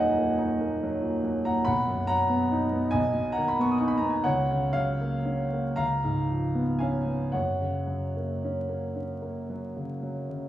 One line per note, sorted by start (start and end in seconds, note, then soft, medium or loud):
0.00 1.63 D#1 medium
0.00 1.62 D#2 medium
0.00 1.02 A#2 soft
0.00 0.83 F#3 soft
0.00 0.18 A#3 soft
0.00 0.30 D#4 medium
0.00 1.69 D#5 medium
0.00 1.45 F#5 medium
0.00 1.70 G#5 loud
0.18 0.53 A#3 soft
0.39 0.74 D#4 soft
0.61 0.95 A#3 soft
0.83 1.17 F#3 medium
1.02 1.37 A#2 soft
1.24 1.58 F#3 medium
1.45 1.67 A#2 soft
1.45 1.65 F#5 medium
1.45 1.67 A#5 medium
1.65 2.90 B1 medium
1.65 2.05 F#5 medium
1.65 2.07 B5 medium
1.88 2.21 F#2 soft
2.07 2.43 F#3 medium
2.07 2.90 F#5 medium
2.07 2.93 A#5 loud
2.29 2.63 B3 medium
2.51 2.85 D#4 medium
2.73 2.94 B3 soft
2.91 4.20 B1 medium
2.91 3.29 D#5 medium
2.91 3.31 G#5 loud
3.14 3.49 B2 soft
3.32 3.48 F#5 medium
3.32 3.49 A#5 medium
3.38 3.72 D#3 soft
3.48 3.61 B5 medium
3.59 3.94 B3 soft
3.59 3.71 C#6 medium
3.71 3.80 D#6 medium
3.78 4.16 D#4 soft
3.78 3.88 C#6 medium
3.88 3.99 B5 medium
3.98 4.10 A#5 medium
4.02 4.24 B3 soft
4.10 4.24 G#5 medium
4.24 5.75 C#2 medium
4.24 4.69 C#5 medium
4.24 4.72 F#5 medium
4.50 4.89 C#3 soft
4.73 5.16 F#3 soft
4.73 5.75 C#5 medium
4.73 5.75 F5 medium
5.01 5.43 A#3 soft
5.25 5.68 C#4 soft
5.53 5.79 A#3 soft
5.76 7.29 C#2 medium
5.76 6.76 F5 medium
5.76 6.79 A#5 medium
6.04 6.44 G#2 soft
6.30 6.70 F3 soft
6.55 6.96 B3 soft
6.79 7.24 C#4 soft
6.79 7.30 F5 medium
6.79 7.33 G#5 medium
7.06 7.33 B3 soft
7.32 10.48 F#2 soft
7.32 9.96 C#5 soft
7.32 9.99 F#5 medium
7.61 8.04 C#3 soft
7.87 8.31 F#3 soft
8.17 8.59 A#3 soft
8.44 8.86 C#4 soft
8.69 9.11 A#3 soft
8.96 9.37 C#4 soft
9.22 9.64 A#3 soft
9.50 9.91 F#3 soft
9.77 10.17 C#3 soft
10.03 10.43 F#3 soft
10.30 10.49 C#3 soft